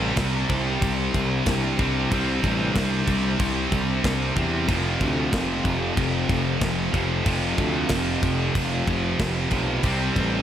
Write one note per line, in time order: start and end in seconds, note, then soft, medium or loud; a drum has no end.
0.00 0.11 A1 medium
0.00 1.76 C3 loud
0.00 4.66 C3 medium
0.00 1.77 G3 loud
0.00 4.66 G3 medium
0.00 1.79 C4 loud
0.00 4.66 D4 medium
0.00 4.65 E4 loud
0.16 0.43 C2 medium
0.16 kick loud
0.16 snare loud
0.16 crash medium
0.49 0.76 C2 medium
0.49 kick loud
0.49 crash medium
0.81 1.08 C2 medium
0.81 kick loud
0.81 crash medium
1.14 1.41 C2 medium
1.14 kick medium
1.14 crash medium
1.46 1.73 C2 loud
1.46 kick loud
1.46 snare loud
1.46 crash medium
1.79 2.05 C2 medium
1.79 2.09 C3 medium
1.79 2.10 G3 medium
1.79 2.14 C4 medium
1.79 kick medium
1.79 crash medium
2.11 2.38 C2 medium
2.11 4.35 C3 medium
2.11 4.36 G3 medium
2.11 4.35 C4 loud
2.11 kick loud
2.11 crash medium
2.43 2.70 A1 medium
2.43 kick medium
2.43 crash medium
2.75 3.02 C2 loud
2.75 kick loud
2.75 snare loud
2.75 crash medium
3.07 3.34 C2 medium
3.07 kick medium
3.07 crash medium
3.39 3.66 C2 loud
3.39 kick loud
3.39 crash medium
3.72 3.98 C2 medium
3.72 kick medium
3.72 crash medium
4.04 4.31 C2 loud
4.04 kick loud
4.04 snare loud
4.04 crash medium
4.36 4.69 E2 loud
4.36 4.68 C3 medium
4.36 4.68 G3 medium
4.36 7.86 C4 medium
4.36 kick medium
4.36 crash medium
4.68 4.95 F1 medium
4.68 6.92 F2 loud
4.68 6.93 C3 loud
4.68 9.79 F3 medium
4.68 6.90 F3 medium
4.68 9.80 C4 medium
4.68 9.80 G4 medium
4.68 9.80 A4 loud
4.68 kick loud
4.68 crash medium
5.00 5.27 D2 medium
5.00 kick medium
5.00 crash medium
5.33 5.60 F1 loud
5.33 kick loud
5.33 snare loud
5.33 crash medium
5.64 5.91 F1 medium
5.64 kick medium
5.64 crash medium
5.97 6.24 F1 loud
5.97 kick loud
5.97 crash medium
6.29 6.56 F1 loud
6.29 kick medium
6.29 crash medium
6.61 6.88 F1 loud
6.61 kick loud
6.61 snare loud
6.61 crash medium
6.91 7.20 F1 medium
6.91 7.24 C3 medium
6.91 7.23 F3 medium
6.91 kick medium
6.91 crash medium
6.95 7.22 F2 medium
7.23 7.52 F1 loud
7.23 9.48 F2 medium
7.23 9.49 C3 loud
7.23 kick loud
7.23 crash medium
7.27 9.49 F3 loud
7.58 7.85 D2 medium
7.58 kick medium
7.58 crash medium
7.89 8.16 F1 medium
7.89 kick loud
7.89 snare loud
7.89 crash loud
8.22 8.49 F1 medium
8.22 kick medium
8.22 crash medium
8.55 8.82 F1 medium
8.55 kick loud
8.55 crash medium
8.87 9.14 F1 loud
8.87 kick medium
8.87 crash medium
9.19 9.46 F1 medium
9.19 kick loud
9.19 snare loud
9.19 crash medium
9.50 9.78 B1 medium
9.50 9.83 F2 medium
9.50 9.81 C3 medium
9.50 9.81 F3 medium
9.50 kick medium
9.50 crash medium
9.83 10.10 C2 loud
9.83 10.42 C3 loud
9.83 10.42 C3 medium
9.83 10.42 G3 medium
9.83 10.42 G3 loud
9.83 10.42 D4 medium
9.83 10.42 E4 medium
9.83 kick loud
9.83 crash medium
9.87 10.42 C4 loud
10.16 10.42 A1 medium
10.16 kick medium
10.16 crash medium